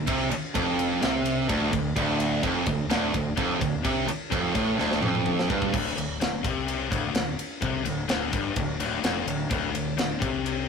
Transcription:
0.07 0.29 C2 loud
0.07 0.30 C3 loud
0.07 kick loud
0.07 ride loud
0.31 muted distorted electric guitar stroke medium
0.31 muted fingered electric bass stroke soft
0.31 ride medium
0.55 0.99 F1 loud
0.55 1.01 F2 loud
0.55 kick loud
0.55 ride loud
0.79 ride medium
1.02 1.46 C2 loud
1.02 1.48 C3 loud
1.02 snare loud
1.02 ride loud
1.25 ride medium
1.49 1.71 D1 loud
1.49 1.72 D2 loud
1.49 kick loud
1.49 ride loud
1.73 1.94 D1 medium
1.73 1.91 D2 medium
1.73 kick loud
1.73 ride medium
1.96 2.40 D1 loud
1.96 2.42 D2 loud
1.96 kick loud
1.96 ride loud
2.20 ride medium
2.43 2.65 F1 loud
2.43 2.66 F2 loud
2.43 kick loud
2.43 ride loud
2.66 2.88 D1 medium
2.66 2.86 D2 medium
2.66 kick medium
2.66 ride medium
2.90 3.13 D1 loud
2.90 3.12 D2 loud
2.90 snare loud
2.90 ride loud
3.13 3.36 D1 medium
3.13 3.32 D2 medium
3.13 kick medium
3.13 ride medium
3.36 3.59 F1 loud
3.36 3.59 F2 loud
3.36 kick loud
3.36 ride loud
3.59 3.83 D1 medium
3.59 3.79 D2 medium
3.59 kick loud
3.59 ride medium
3.83 4.06 C2 loud
3.83 4.07 C3 loud
3.83 kick loud
3.83 ride loud
4.07 muted distorted electric guitar stroke medium
4.07 muted fingered electric bass stroke soft
4.07 ride medium
4.31 4.53 F1 loud
4.31 4.54 F2 loud
4.31 kick loud
4.31 ride loud
4.54 4.77 A1 medium
4.54 4.76 A2 loud
4.54 kick loud
4.54 ride medium
4.76 5.01 D1 loud
4.76 5.00 D2 loud
4.76 snare medium
4.92 snare medium
5.01 5.46 F1 medium
5.01 5.48 F2 loud
5.01 mid tom medium
5.15 mid tom medium
5.26 mid tom loud
5.39 snare medium
5.48 5.72 G1 medium
5.48 5.72 G2 loud
5.48 kick loud
5.62 kick medium
5.72 5.95 D1 loud
5.72 5.95 D2 loud
5.72 kick loud
5.72 crash loud
5.97 6.19 D1 medium
5.97 6.15 D2 medium
5.97 ride medium
6.21 6.42 D1 medium
6.21 6.39 D2 medium
6.21 snare loud
6.21 ride loud
6.43 6.88 C2 medium
6.43 6.90 C3 loud
6.43 kick loud
6.43 ride medium
6.68 ride medium
6.90 7.13 D1 loud
6.90 7.13 D2 loud
6.90 kick loud
6.90 ride medium
7.14 7.36 D1 medium
7.14 7.33 D2 medium
7.14 snare loud
7.14 ride loud
7.39 ride medium
7.61 7.84 C2 loud
7.61 7.84 C3 loud
7.61 kick loud
7.61 ride loud
7.84 8.07 D1 medium
7.84 8.04 D2 medium
7.84 ride medium
8.08 8.31 D1 loud
8.08 8.31 D2 loud
8.08 snare loud
8.08 ride loud
8.32 8.55 G1 loud
8.32 8.55 G2 loud
8.32 kick loud
8.32 ride medium
8.56 8.78 D1 medium
8.56 8.75 D2 medium
8.56 kick loud
8.56 ride loud
8.79 9.02 D1 loud
8.79 9.03 D2 loud
8.79 ride medium
9.03 9.25 F1 loud
9.03 9.26 F2 loud
9.03 snare loud
9.03 ride loud
9.27 9.49 D1 medium
9.27 9.46 D2 medium
9.27 ride medium
9.50 9.73 D1 loud
9.50 9.73 D2 loud
9.50 kick loud
9.50 ride loud
9.73 9.96 D1 medium
9.73 9.93 D2 medium
9.73 ride medium
9.97 10.19 D1 medium
9.97 10.16 D2 medium
9.97 snare loud
9.97 ride loud
10.20 10.66 C2 loud
10.20 10.67 C3 loud
10.20 kick loud
10.20 ride medium
10.46 ride medium

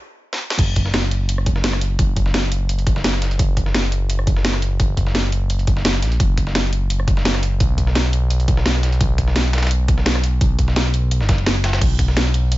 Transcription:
0.33 snare medium
0.50 snare loud
0.59 1.98 F#1 loud
0.59 kick loud
0.59 closed hi-hat medium
0.59 closed hi-hat loud
0.59 crash loud
0.76 kick medium
0.76 closed hi-hat medium
0.86 snare soft
0.94 snare loud
0.94 closed hi-hat medium
0.94 closed hi-hat loud
1.11 closed hi-hat medium
1.29 closed hi-hat loud
1.29 closed hi-hat medium
1.38 cross-stick soft
1.46 kick loud
1.46 closed hi-hat medium
1.56 snare medium
1.64 snare loud
1.64 closed hi-hat loud
1.64 closed hi-hat medium
1.73 cross-stick soft
1.73 snare medium
1.81 closed hi-hat medium
1.99 3.38 F#1 loud
1.99 kick loud
1.99 closed hi-hat loud
1.99 closed hi-hat medium
2.16 kick medium
2.16 closed hi-hat medium
2.26 snare soft
2.34 snare loud
2.34 closed hi-hat medium
2.52 closed hi-hat medium
2.69 closed hi-hat medium
2.79 closed hi-hat soft
2.87 kick loud
2.87 closed hi-hat medium
2.96 snare medium
3.04 snare loud
3.04 closed hi-hat medium
3.14 snare soft
3.22 snare soft
3.22 closed hi-hat medium
3.31 closed hi-hat soft
3.39 4.78 F#1 loud
3.39 kick loud
3.39 closed hi-hat medium
3.57 kick medium
3.57 closed hi-hat medium
3.66 snare soft
3.74 snare loud
3.74 closed hi-hat medium
3.92 closed hi-hat medium
4.10 closed hi-hat medium
4.19 cross-stick soft
4.27 kick loud
4.27 closed hi-hat medium
4.36 snare medium
4.45 snare loud
4.45 closed hi-hat medium
4.54 cross-stick soft
4.54 snare medium
4.62 closed hi-hat medium
4.80 6.04 F#1 loud
4.80 kick loud
4.80 closed hi-hat medium
4.97 kick medium
4.97 closed hi-hat medium
5.07 snare soft
5.15 snare loud
5.15 closed hi-hat medium
5.32 closed hi-hat medium
5.50 closed hi-hat medium
5.59 closed hi-hat soft
5.67 kick loud
5.67 closed hi-hat medium
5.77 snare medium
5.85 snare loud
5.85 closed hi-hat medium
5.94 snare soft
6.02 6.18 A#1 medium
6.02 snare soft
6.02 closed hi-hat medium
6.12 closed hi-hat soft
6.20 7.59 F#1 loud
6.20 kick loud
6.20 closed hi-hat medium
6.38 kick medium
6.38 closed hi-hat medium
6.47 snare soft
6.55 snare loud
6.55 closed hi-hat medium
6.73 closed hi-hat medium
6.90 closed hi-hat medium
7.00 cross-stick soft
7.08 kick loud
7.08 closed hi-hat medium
7.17 snare medium
7.25 snare loud
7.25 closed hi-hat medium
7.35 cross-stick soft
7.35 snare medium
7.43 closed hi-hat medium
7.60 8.99 B1 loud
7.60 kick loud
7.60 closed hi-hat medium
7.60 closed hi-hat loud
7.78 kick medium
7.78 closed hi-hat medium
7.87 snare soft
7.95 snare loud
7.95 closed hi-hat medium
8.13 closed hi-hat medium
8.30 closed hi-hat medium
8.40 closed hi-hat soft
8.48 kick loud
8.48 closed hi-hat medium
8.57 snare medium
8.66 snare loud
8.66 closed hi-hat medium
8.75 snare soft
8.83 snare soft
8.83 closed hi-hat medium
8.92 closed hi-hat soft
9.01 10.40 B1 loud
9.01 kick loud
9.01 closed hi-hat loud
9.01 closed hi-hat medium
9.18 kick medium
9.18 closed hi-hat medium
9.28 snare soft
9.36 snare loud
9.36 closed hi-hat medium
9.53 snare medium
9.53 closed hi-hat medium
9.58 snare medium
9.58 closed hi-hat medium
9.63 snare medium
9.63 closed hi-hat medium
9.67 snare medium
9.67 closed hi-hat medium
9.71 closed hi-hat medium
9.88 kick loud
9.88 closed hi-hat medium
9.98 snare medium
10.06 snare loud
10.06 closed hi-hat medium
10.06 closed hi-hat loud
10.15 cross-stick soft
10.15 snare medium
10.24 closed hi-hat medium
10.41 11.22 B1 loud
10.41 kick loud
10.41 closed hi-hat medium
10.41 closed hi-hat loud
10.59 kick medium
10.59 closed hi-hat medium
10.68 snare soft
10.76 snare loud
10.76 closed hi-hat medium
10.76 closed hi-hat loud
10.94 closed hi-hat medium
11.11 closed hi-hat medium
11.21 11.80 F#1 medium
11.21 snare soft
11.29 kick loud
11.29 snare loud
11.29 closed hi-hat medium
11.38 closed hi-hat soft
11.46 snare loud
11.46 closed hi-hat medium
11.46 closed hi-hat loud
11.64 snare loud
11.64 closed hi-hat medium
11.73 snare loud
11.73 closed hi-hat medium
11.81 12.58 B1 loud
11.81 kick loud
11.81 closed hi-hat medium
11.81 closed hi-hat loud
11.81 crash medium
11.99 kick medium
11.99 closed hi-hat medium
12.08 snare soft
12.17 snare loud
12.17 closed hi-hat medium
12.17 closed hi-hat loud
12.34 closed hi-hat medium
12.52 closed hi-hat medium

